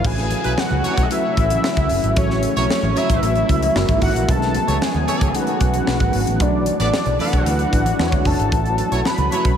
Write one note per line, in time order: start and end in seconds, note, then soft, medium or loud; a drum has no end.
0.00 0.17 C#5 medium
0.00 0.17 E5 medium
0.04 0.33 A1 loud
0.04 3.72 C#3 medium
0.04 4.24 F#3 medium
0.04 0.90 A3 medium
0.04 2.14 A3 medium
0.04 0.90 C#4 medium
0.04 0.90 E4 medium
0.04 0.90 F#4 medium
0.04 0.91 B4 medium
0.04 0.61 G#5 loud
0.04 kick loud
0.04 crash loud
0.04 low conga medium
0.18 snare soft
0.18 closed hi-hat soft
0.31 closed hi-hat medium
0.31 high conga medium
0.44 0.54 B1 medium
0.44 0.53 F#3 loud
0.44 0.53 E4 medium
0.44 0.53 B4 loud
0.44 closed hi-hat medium
0.57 1.13 F#5 loud
0.57 snare loud
0.57 high conga medium
0.70 0.81 C#2 medium
0.70 low conga medium
0.84 1.07 F#3 loud
0.84 1.07 E4 medium
0.84 1.07 C#5 loud
0.84 closed hi-hat medium
0.84 muted conga soft
0.84 high conga soft
0.84 low conga medium
0.97 1.07 B1 medium
0.97 kick medium
0.97 closed hi-hat medium
1.10 1.96 A3 medium
1.10 1.96 C#4 medium
1.10 1.96 E4 medium
1.10 1.97 F#4 medium
1.10 1.97 B4 medium
1.10 2.17 E5 loud
1.10 closed hi-hat medium
1.10 muted conga soft
1.37 1.56 A1 loud
1.37 kick medium
1.37 closed hi-hat medium
1.50 closed hi-hat medium
1.50 high conga medium
1.64 snare loud
1.77 1.86 C#2 loud
1.77 kick medium
1.77 closed hi-hat soft
1.89 2.00 F#1 medium
1.89 open hi-hat medium
2.03 2.13 G#1 loud
2.03 closed hi-hat soft
2.16 2.45 A1 loud
2.16 3.02 A3 medium
2.16 3.74 A3 medium
2.16 3.02 C#4 medium
2.16 3.02 E4 medium
2.16 3.03 F#4 medium
2.16 3.03 A4 medium
2.16 2.54 C#5 medium
2.16 kick loud
2.16 closed hi-hat medium
2.16 muted conga soft
2.16 low conga medium
2.30 snare soft
2.43 closed hi-hat medium
2.43 muted conga soft
2.43 high conga medium
2.56 2.66 B1 medium
2.56 2.65 F#3 medium
2.56 2.65 E4 medium
2.56 2.65 C#5 loud
2.56 2.99 C#5 loud
2.56 snare soft
2.56 closed hi-hat soft
2.69 snare loud
2.69 high conga medium
2.83 2.92 A1 medium
2.83 low conga medium
2.96 3.30 F#3 loud
2.96 3.30 E4 loud
2.96 3.30 C#5 loud
2.96 4.02 E5 loud
2.96 closed hi-hat medium
2.96 muted conga soft
2.96 high conga soft
2.96 low conga medium
3.10 3.19 A1 medium
3.10 kick medium
3.10 closed hi-hat medium
3.23 3.41 A1 loud
3.23 3.76 A3 medium
3.23 3.76 C#4 medium
3.23 3.75 E4 medium
3.23 3.75 F#4 medium
3.23 3.76 B4 medium
3.23 closed hi-hat medium
3.35 closed hi-hat soft
3.49 3.68 C#2 medium
3.49 kick medium
3.49 closed hi-hat medium
3.62 closed hi-hat medium
3.62 high conga medium
3.75 3.85 F#1 loud
3.75 4.28 E3 medium
3.75 4.18 G#3 medium
3.75 4.28 A#3 medium
3.75 4.18 D#4 medium
3.75 4.19 E4 medium
3.75 4.19 F#4 medium
3.75 4.19 A#4 loud
3.75 snare loud
3.75 muted conga soft
3.88 3.98 G#1 medium
3.88 kick medium
3.88 closed hi-hat soft
4.02 4.11 G#1 medium
4.02 4.31 F#5 medium
4.02 kick medium
4.02 open hi-hat medium
4.02 muted conga soft
4.15 4.25 A#1 loud
4.15 closed hi-hat soft
4.28 4.57 B1 loud
4.28 5.86 D#3 medium
4.28 7.95 F#3 medium
4.28 5.15 G#3 medium
4.28 5.14 A3 medium
4.28 6.38 B3 medium
4.28 5.14 C#4 medium
4.28 5.14 D#4 medium
4.28 5.15 B4 medium
4.28 4.84 A5 loud
4.28 kick loud
4.28 closed hi-hat loud
4.28 muted conga soft
4.28 low conga medium
4.42 snare soft
4.42 closed hi-hat soft
4.54 closed hi-hat medium
4.54 high conga medium
4.68 4.77 C#2 medium
4.68 4.76 A3 medium
4.68 4.76 G#4 medium
4.68 4.76 C#5 loud
4.68 closed hi-hat medium
4.82 5.37 G#5 loud
4.82 snare loud
4.82 muted conga soft
4.82 high conga medium
4.94 5.04 D#2 medium
4.94 low conga medium
5.07 5.30 A3 loud
5.07 5.30 G#4 loud
5.07 5.30 C#5 loud
5.07 closed hi-hat medium
5.07 high conga soft
5.07 low conga medium
5.21 5.31 C#2 medium
5.21 kick loud
5.21 closed hi-hat medium
5.34 5.86 A3 medium
5.34 5.86 C#4 medium
5.34 5.88 D#4 medium
5.34 5.87 G#4 medium
5.34 5.41 A4 medium
5.34 6.43 F#5 loud
5.34 closed hi-hat medium
5.42 5.87 B4 medium
5.47 closed hi-hat soft
5.61 5.80 B1 medium
5.61 kick medium
5.61 closed hi-hat medium
5.74 closed hi-hat medium
5.74 high conga medium
5.87 5.97 B1 loud
5.87 6.40 D#3 medium
5.87 6.30 A3 medium
5.87 6.30 C#4 medium
5.87 5.94 D4 medium
5.87 6.31 G#4 medium
5.87 6.31 B4 medium
5.87 snare loud
5.94 6.33 D#4 medium
6.00 6.10 G#1 medium
6.00 kick medium
6.00 closed hi-hat soft
6.13 6.23 G#1 medium
6.13 open hi-hat medium
6.27 6.40 A1 medium
6.27 closed hi-hat medium
6.40 6.68 B1 medium
6.40 8.50 E3 medium
6.40 7.26 A3 medium
6.40 7.26 D4 medium
6.40 8.50 D4 medium
6.40 7.26 E4 medium
6.40 7.26 F#4 medium
6.40 7.26 B4 medium
6.40 6.80 D5 loud
6.40 kick loud
6.40 closed hi-hat medium
6.40 low conga medium
6.66 closed hi-hat medium
6.66 muted conga soft
6.66 high conga medium
6.80 6.89 A1 medium
6.80 6.88 B3 medium
6.80 6.88 A4 medium
6.80 6.88 D5 loud
6.80 7.17 D5 loud
6.80 snare soft
6.80 closed hi-hat medium
6.93 snare loud
6.93 high conga medium
7.06 7.16 B1 medium
7.06 closed hi-hat soft
7.06 low conga medium
7.19 7.53 B3 loud
7.19 7.53 A4 loud
7.19 7.53 D5 loud
7.19 8.28 F#5 loud
7.19 open hi-hat medium
7.19 muted conga soft
7.19 high conga soft
7.19 low conga medium
7.33 7.42 B1 medium
7.33 kick medium
7.33 closed hi-hat medium
7.46 7.65 D2 medium
7.46 7.99 A3 medium
7.46 7.98 D4 medium
7.46 7.98 E4 medium
7.46 7.99 F#4 medium
7.46 7.99 B4 medium
7.46 closed hi-hat medium
7.46 muted conga soft
7.59 closed hi-hat soft
7.73 7.92 A1 medium
7.73 kick medium
7.73 closed hi-hat medium
7.73 muted conga soft
7.85 closed hi-hat medium
7.85 high conga medium
7.99 8.12 E2 loud
7.99 8.51 G#3 medium
7.99 8.42 G#3 loud
7.99 8.42 D4 medium
7.99 8.42 E4 medium
7.99 8.42 F#4 medium
7.99 8.06 B4 medium
7.99 snare loud
7.99 muted conga soft
8.06 8.46 C#5 loud
8.12 8.22 D2 loud
8.12 kick loud
8.12 closed hi-hat soft
8.25 8.35 F#1 loud
8.25 9.08 A5 loud
8.25 kick medium
8.25 open hi-hat medium
8.25 muted conga soft
8.39 8.49 G#1 medium
8.39 closed hi-hat soft
8.51 8.80 A1 loud
8.51 9.57 F#3 medium
8.51 9.38 A3 medium
8.51 9.57 A3 medium
8.51 9.38 C#4 medium
8.51 9.57 C#4 medium
8.51 9.38 E4 medium
8.51 9.38 F#4 medium
8.51 9.38 B4 medium
8.51 kick loud
8.51 closed hi-hat medium
8.51 muted conga soft
8.51 low conga medium
8.66 closed hi-hat soft
8.78 closed hi-hat medium
8.78 high conga medium
8.92 9.01 B1 medium
8.92 9.00 F#3 medium
8.92 9.01 E4 medium
8.92 9.01 C#5 loud
8.92 closed hi-hat medium
9.05 9.57 B5 loud
9.05 snare medium
9.05 muted conga soft
9.05 high conga medium
9.18 9.28 C#2 loud
9.18 closed hi-hat soft
9.18 low conga medium
9.31 9.48 F#3 loud
9.31 9.48 E4 loud
9.31 9.49 C#5 loud
9.31 closed hi-hat medium
9.31 muted conga soft
9.31 high conga soft
9.31 low conga medium
9.45 9.54 B1 medium
9.45 kick loud
9.45 closed hi-hat medium